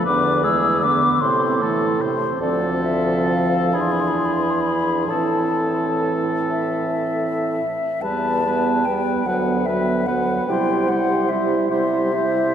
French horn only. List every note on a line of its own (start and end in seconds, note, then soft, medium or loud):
0.05 0.44 D3 soft
0.42 0.85 E3 soft
0.83 1.21 D3 soft
1.21 1.61 C3 soft
1.60 2.02 E3 soft
2.00 2.29 C3 soft
2.42 3.76 F3 soft
3.74 5.07 E3 soft
5.08 7.61 E3 soft
8.02 8.44 G3 soft
8.45 8.85 G3 soft
8.87 9.25 G3 soft
9.25 9.65 F#3 soft
9.68 10.07 F#3 soft
10.09 10.48 F#3 soft
10.48 10.89 G3 soft
10.89 11.29 G3 soft
11.30 11.70 G3 soft
11.72 12.12 G3 soft
12.14 12.55 G3 soft